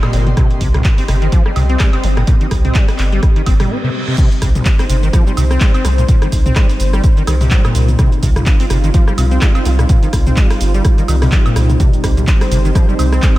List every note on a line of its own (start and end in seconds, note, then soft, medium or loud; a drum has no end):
0.00 0.28 A#2 loud
0.00 3.70 C4 medium
0.00 3.70 G4 medium
0.00 3.70 D#5 medium
0.00 0.79 C6 medium
0.00 cross-stick medium
0.00 closed hi-hat soft
0.00 high woodblock medium
0.13 0.34 G1 medium
0.13 open hi-hat loud
0.27 0.30 C3 loud
0.27 closed hi-hat soft
0.27 mid tom medium
0.37 0.48 C3 loud
0.37 kick loud
0.37 cross-stick medium
0.37 closed hi-hat medium
0.51 closed hi-hat soft
0.61 0.82 C2 loud
0.61 0.68 C3 medium
0.61 kick medium
0.61 open hi-hat loud
0.74 0.83 C2 loud
0.74 3.73 D#6 medium
0.74 cross-stick medium
0.74 closed hi-hat soft
0.74 mid tom medium
0.84 kick loud
0.84 clap loud
0.84 closed hi-hat loud
0.98 1.04 C4 medium
0.98 open hi-hat medium
1.08 1.29 G1 medium
1.08 1.16 C3 medium
1.08 cross-stick medium
1.08 open hi-hat loud
1.22 1.28 D#3 medium
1.22 closed hi-hat soft
1.32 1.43 F3 loud
1.32 kick loud
1.32 closed hi-hat loud
1.46 1.51 G3 medium
1.46 cross-stick medium
1.56 1.77 C2 medium
1.56 1.63 C3 medium
1.56 open hi-hat loud
1.56 high woodblock medium
1.69 1.81 C4 medium
1.69 closed hi-hat soft
1.79 1.91 G3 medium
1.79 kick loud
1.79 cross-stick medium
1.79 clap loud
1.79 closed hi-hat medium
1.93 2.05 C4 medium
1.93 closed hi-hat soft
1.93 high woodblock medium
2.04 2.24 G1 loud
2.04 2.08 D#3 medium
2.04 open hi-hat loud
2.17 2.23 A#2 medium
2.17 cross-stick medium
2.17 closed hi-hat soft
2.27 2.35 A#2 medium
2.27 kick loud
2.27 closed hi-hat loud
2.41 2.47 D#3 medium
2.41 closed hi-hat soft
2.51 2.72 C2 loud
2.51 kick medium
2.51 cross-stick medium
2.51 open hi-hat loud
2.65 2.77 C4 medium
2.65 closed hi-hat soft
2.65 mid tom medium
2.75 2.86 G3 medium
2.75 kick loud
2.75 clap loud
2.75 closed hi-hat loud
2.88 cross-stick medium
2.88 open hi-hat medium
2.98 3.20 G1 medium
2.98 clap medium
2.98 open hi-hat loud
3.12 3.21 G3 medium
3.12 closed hi-hat soft
3.23 kick loud
3.23 cross-stick medium
3.23 closed hi-hat loud
3.23 reverse cymbal medium
3.36 3.42 D#3 medium
3.36 closed hi-hat soft
3.46 3.67 G1 medium
3.46 3.54 C4 medium
3.46 kick medium
3.46 open hi-hat loud
3.46 high woodblock medium
3.60 3.72 G3 loud
3.60 cross-stick medium
3.60 open hi-hat medium
3.60 mid tom medium
3.71 3.78 C4 medium
3.84 3.90 C3 loud
4.08 4.16 C3 medium
4.18 4.29 C3 loud
4.18 13.38 G3 medium
4.18 13.38 C4 medium
4.18 13.38 D#4 medium
4.18 7.98 C5 medium
4.18 kick loud
4.18 closed hi-hat loud
4.18 crash loud
4.18 shaker soft
4.32 closed hi-hat soft
4.32 shaker soft
4.42 4.62 C2 loud
4.42 4.49 C3 medium
4.42 kick medium
4.42 cross-stick medium
4.42 open hi-hat loud
4.42 shaker medium
4.55 4.64 C2 loud
4.55 closed hi-hat soft
4.55 mid tom medium
4.55 shaker soft
4.65 kick loud
4.65 clap loud
4.65 closed hi-hat loud
4.65 shaker soft
4.79 4.85 C4 medium
4.79 cross-stick medium
4.79 open hi-hat medium
4.79 shaker soft
4.89 5.10 G1 loud
4.89 4.97 C3 medium
4.89 open hi-hat loud
4.89 shaker medium
5.03 5.09 D#3 medium
5.03 closed hi-hat soft
5.03 shaker soft
5.13 5.24 F3 loud
5.13 kick loud
5.13 cross-stick medium
5.13 closed hi-hat loud
5.13 shaker soft
5.27 5.32 G3 medium
5.27 shaker soft
5.37 5.58 C2 medium
5.37 5.44 C3 medium
5.37 open hi-hat loud
5.37 high woodblock medium
5.37 shaker medium
5.51 5.62 C4 medium
5.51 cross-stick medium
5.51 closed hi-hat soft
5.51 shaker soft
5.61 5.72 G3 medium
5.61 kick loud
5.61 clap loud
5.61 closed hi-hat loud
5.61 shaker soft
5.74 5.86 C4 medium
5.74 closed hi-hat soft
5.74 high woodblock medium
5.74 shaker soft
5.85 6.05 C2 loud
5.85 5.89 D#3 medium
5.85 cross-stick medium
5.85 open hi-hat loud
5.85 shaker medium
5.98 6.04 A#2 medium
5.98 closed hi-hat soft
5.98 shaker soft
6.08 6.16 A#2 medium
6.08 kick loud
6.08 closed hi-hat loud
6.08 shaker soft
6.22 6.28 D#3 medium
6.22 cross-stick medium
6.22 closed hi-hat soft
6.22 shaker soft
6.32 6.53 C2 loud
6.32 kick medium
6.32 open hi-hat loud
6.32 shaker medium
6.46 6.58 C4 medium
6.46 closed hi-hat soft
6.46 mid tom medium
6.46 shaker soft
6.56 6.67 G3 medium
6.56 kick loud
6.56 cross-stick medium
6.56 clap loud
6.56 closed hi-hat loud
6.56 shaker soft
6.69 open hi-hat medium
6.69 shaker soft
6.80 7.01 G1 loud
6.80 open hi-hat loud
6.80 shaker medium
6.93 7.02 G3 medium
6.93 cross-stick medium
6.93 closed hi-hat soft
6.93 shaker soft
7.04 kick loud
7.04 closed hi-hat medium
7.04 shaker soft
7.17 7.23 D#3 medium
7.17 closed hi-hat soft
7.17 shaker soft
7.27 7.48 C2 medium
7.27 7.35 D#3 medium
7.27 cross-stick medium
7.27 open hi-hat loud
7.27 high woodblock medium
7.27 shaker medium
7.41 7.53 C3 medium
7.41 open hi-hat medium
7.41 mid tom medium
7.41 shaker soft
7.51 7.62 G3 medium
7.51 kick loud
7.51 clap loud
7.51 closed hi-hat medium
7.51 shaker soft
7.65 7.90 A#2 loud
7.65 cross-stick medium
7.65 closed hi-hat soft
7.65 high woodblock medium
7.65 shaker soft
7.75 7.96 C2 loud
7.75 open hi-hat loud
7.75 shaker medium
7.88 7.92 C3 loud
7.88 closed hi-hat soft
7.88 mid tom loud
7.88 shaker soft
7.99 8.10 C3 loud
7.99 11.79 F4 loud
7.99 kick loud
7.99 cross-stick medium
7.99 closed hi-hat medium
7.99 shaker soft
8.12 closed hi-hat soft
8.12 shaker soft
8.23 8.43 C2 loud
8.23 8.30 C3 medium
8.23 kick medium
8.23 open hi-hat loud
8.23 shaker medium
8.36 8.45 C2 loud
8.36 cross-stick medium
8.36 closed hi-hat soft
8.36 mid tom medium
8.36 shaker soft
8.46 kick loud
8.46 clap loud
8.46 closed hi-hat medium
8.46 shaker soft
8.60 8.66 C4 medium
8.60 open hi-hat medium
8.60 shaker soft
8.70 8.91 G1 loud
8.70 8.78 C3 medium
8.70 cross-stick medium
8.70 open hi-hat loud
8.70 shaker medium
8.84 8.90 D#3 medium
8.84 closed hi-hat soft
8.84 shaker soft
8.94 9.05 F3 loud
8.94 kick loud
8.94 closed hi-hat medium
8.94 shaker soft
9.08 9.13 G3 medium
9.08 cross-stick medium
9.08 shaker soft
9.18 9.39 C2 medium
9.18 9.25 C3 medium
9.18 open hi-hat loud
9.18 high woodblock medium
9.18 shaker medium
9.31 9.43 C4 medium
9.31 closed hi-hat soft
9.31 shaker soft
9.41 9.53 G3 medium
9.41 kick loud
9.41 cross-stick medium
9.41 clap loud
9.41 closed hi-hat medium
9.41 shaker soft
9.55 9.67 C4 medium
9.55 closed hi-hat soft
9.55 high woodblock medium
9.55 shaker soft
9.65 9.86 C2 loud
9.65 9.70 D#3 medium
9.65 open hi-hat loud
9.65 shaker medium
9.79 9.85 A#2 medium
9.79 cross-stick medium
9.79 closed hi-hat soft
9.79 shaker soft
9.89 9.97 A#2 medium
9.89 kick loud
9.89 closed hi-hat medium
9.89 shaker soft
10.03 10.09 D#3 medium
10.03 closed hi-hat soft
10.03 shaker soft
10.13 10.34 C2 loud
10.13 kick medium
10.13 cross-stick medium
10.13 open hi-hat loud
10.13 shaker medium
10.27 10.39 C4 medium
10.27 closed hi-hat soft
10.27 mid tom medium
10.27 shaker soft
10.37 10.48 G3 medium
10.37 kick loud
10.37 clap loud
10.37 closed hi-hat medium
10.37 shaker soft
10.50 cross-stick medium
10.50 open hi-hat medium
10.50 shaker soft
10.61 10.81 G1 loud
10.61 open hi-hat loud
10.61 shaker medium
10.74 10.83 G3 medium
10.74 closed hi-hat soft
10.74 shaker soft
10.85 kick loud
10.85 cross-stick medium
10.85 closed hi-hat medium
10.85 shaker soft
10.98 11.04 D#3 medium
10.98 closed hi-hat soft
10.98 shaker soft
11.08 11.29 C2 medium
11.08 11.16 D#3 medium
11.08 open hi-hat loud
11.08 high woodblock medium
11.08 shaker medium
11.22 11.34 C3 medium
11.22 cross-stick medium
11.22 open hi-hat medium
11.22 mid tom medium
11.22 shaker soft
11.32 11.43 G3 medium
11.32 kick loud
11.32 clap loud
11.32 closed hi-hat medium
11.32 shaker soft
11.46 11.71 A#2 loud
11.46 closed hi-hat soft
11.46 high woodblock medium
11.46 shaker soft
11.56 11.77 C2 loud
11.56 cross-stick medium
11.56 open hi-hat loud
11.56 shaker medium
11.70 11.73 C3 loud
11.70 closed hi-hat soft
11.70 mid tom loud
11.70 shaker soft
11.80 11.91 C3 loud
11.80 13.38 C5 medium
11.80 kick loud
11.80 closed hi-hat medium
11.80 shaker soft
11.93 closed hi-hat soft
11.93 shaker soft
12.04 12.24 C2 loud
12.04 12.11 C3 medium
12.04 kick medium
12.04 cross-stick medium
12.04 open hi-hat loud
12.04 shaker medium
12.17 12.26 C2 loud
12.17 closed hi-hat soft
12.17 mid tom medium
12.17 shaker soft
12.27 kick loud
12.27 clap loud
12.27 closed hi-hat medium
12.27 shaker soft
12.41 12.47 C4 medium
12.41 cross-stick medium
12.41 open hi-hat medium
12.41 shaker soft
12.51 12.72 G1 loud
12.51 12.59 C3 medium
12.51 open hi-hat loud
12.51 shaker medium
12.65 12.71 D#3 medium
12.65 closed hi-hat soft
12.65 shaker soft
12.75 12.86 F3 loud
12.75 kick loud
12.75 cross-stick medium
12.75 closed hi-hat medium
12.75 shaker soft
12.89 12.94 G3 medium
12.89 shaker soft
12.99 13.20 C2 medium
12.99 13.06 C3 medium
12.99 open hi-hat loud
12.99 high woodblock medium
12.99 shaker medium
13.12 13.24 C4 medium
13.12 cross-stick medium
13.12 closed hi-hat soft
13.12 shaker soft
13.22 13.34 G3 medium
13.22 kick loud
13.22 clap loud
13.22 closed hi-hat medium
13.22 shaker soft